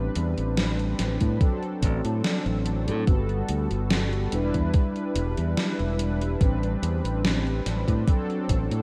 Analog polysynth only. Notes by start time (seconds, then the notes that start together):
Already playing: G3 C4 D4 B4
1.39 F#3 C4 D4 A4
3.06 G3 B3 F#4 A4
4.31 G3 D4 E4 B4
6.40 G3 C4 D4 B4
8.06 F#3 C4 D4 A4